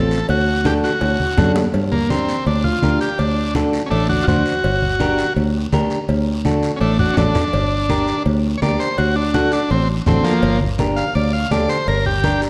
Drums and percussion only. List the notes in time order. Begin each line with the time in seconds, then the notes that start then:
0.11 short guiro
0.29 cowbell, high conga, long guiro
0.65 high conga, short guiro
0.84 short guiro
1.01 cowbell, high conga, high timbale, long guiro
1.20 high conga
1.38 high conga, low conga, low timbale, short guiro
1.56 low timbale, short guiro
1.74 cowbell, high conga, long guiro
1.92 high conga
2.10 high conga, short guiro
2.29 short guiro
2.46 cowbell, high conga, long guiro
2.64 high conga
2.82 high conga, short guiro
3.01 short guiro
3.19 cowbell, high conga, long guiro
3.55 high conga, short guiro
3.73 short guiro
3.91 cowbell, high conga, long guiro
4.10 high conga
4.27 high conga, low conga, short guiro
4.46 short guiro
4.63 cowbell, high conga, long guiro
4.82 high conga
5.00 high conga, short guiro
5.18 short guiro
5.36 cowbell, high conga, long guiro
5.72 high conga, low timbale, short guiro
5.90 short guiro
6.09 cowbell, high conga, long guiro
6.45 high conga, short guiro
6.63 short guiro
6.81 cowbell, long guiro
6.99 low conga
7.17 low conga, low timbale, short guiro
7.35 low conga, short guiro
7.53 cowbell, high conga, long guiro
7.90 high conga, short guiro
8.07 short guiro
8.26 cowbell, high conga, long guiro
8.62 high conga, low timbale, short guiro
8.80 short guiro
8.98 cowbell, high conga, long guiro
9.34 high conga, short guiro
9.52 short guiro
9.70 cowbell, high conga, long guiro
10.06 high conga, low conga, low timbale, short guiro
10.25 short guiro
10.43 cowbell, long guiro
10.61 high conga
10.78 high conga, short guiro
10.97 short guiro
11.15 cowbell, high conga, long guiro
11.51 high conga, low timbale, short guiro
11.69 short guiro
11.87 cowbell, high conga, long guiro
12.06 high conga
12.23 high conga, short guiro
12.42 short guiro